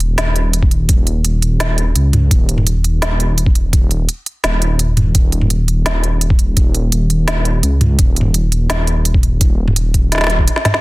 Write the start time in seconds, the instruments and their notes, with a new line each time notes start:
Already playing: detuned saw bass D#1
0.00 closed hi-hat
0.18 detuned saw bass D#1, snare, closed hi-hat
0.36 closed hi-hat
0.53 closed hi-hat
0.63 kick
0.71 closed hi-hat
0.89 kick, closed hi-hat
1.07 closed hi-hat
1.24 detuned saw bass D#1, closed hi-hat
1.42 closed hi-hat
1.60 snare, closed hi-hat
1.78 closed hi-hat
1.96 detuned saw bass C#2, closed hi-hat
2.13 closed hi-hat, mid tom
2.31 detuned saw bass D#1, kick, closed hi-hat
2.49 closed hi-hat
2.58 mid tom
2.67 closed hi-hat
2.84 closed hi-hat
3.02 detuned saw bass D#1, snare, closed hi-hat
3.20 closed hi-hat
3.38 closed hi-hat
3.46 kick
3.55 closed hi-hat
3.73 kick, closed hi-hat
3.91 closed hi-hat
4.09 closed hi-hat
4.26 closed hi-hat
4.44 detuned saw bass D#1, snare, closed hi-hat
4.62 closed hi-hat
4.79 closed hi-hat
4.97 closed hi-hat, mid tom
5.15 detuned saw bass D#1, kick, closed hi-hat
5.32 closed hi-hat
5.41 mid tom
5.50 closed hi-hat
5.68 closed hi-hat
5.86 detuned saw bass D#1, snare, closed hi-hat
6.04 closed hi-hat
6.21 closed hi-hat
6.30 kick
6.39 closed hi-hat
6.57 kick, closed hi-hat
6.75 closed hi-hat
6.92 detuned saw bass D#1, closed hi-hat
7.10 closed hi-hat
7.28 snare, closed hi-hat
7.45 closed hi-hat
7.63 detuned saw bass C#2, closed hi-hat
7.81 closed hi-hat, mid tom
7.99 detuned saw bass D#1, kick, closed hi-hat
8.16 closed hi-hat
8.21 mid tom
8.34 closed hi-hat
8.52 closed hi-hat
8.70 detuned saw bass D#1, snare, closed hi-hat
8.87 closed hi-hat
9.05 closed hi-hat
9.14 kick
9.23 closed hi-hat
9.41 kick, closed hi-hat
9.68 mid tom
9.76 detuned saw bass D#1, closed hi-hat
9.94 kick, closed hi-hat
10.12 snare, closed hi-hat
10.15 snare
10.18 snare
10.21 snare
10.24 snare
10.27 snare, closed hi-hat
10.39 kick
10.47 closed hi-hat
10.56 snare
10.65 snare, closed hi-hat, mid tom
10.74 snare